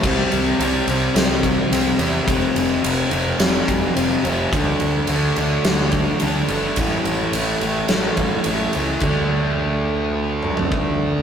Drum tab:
CC |x---------------|----------------|----------------|----------------|
RD |--x-x-x-x-x-x-x-|x-x-x-x-x-x-x-x-|x-x-x-x-x-x-x-x-|x-x-x-x-x-x-x-x-|
SD |--------o-------|--------o-------|--------o-------|--------o-------|
T2 |----------------|----------------|----------------|----------------|
FT |----------------|----------------|----------------|----------------|
BD |o---------o-----|o---------o-----|o---------o-----|o---------o-----|

CC |x---------------|
RD |----------------|
SD |----------------|
T2 |----------o-----|
FT |-----------o----|
BD |o-----------o---|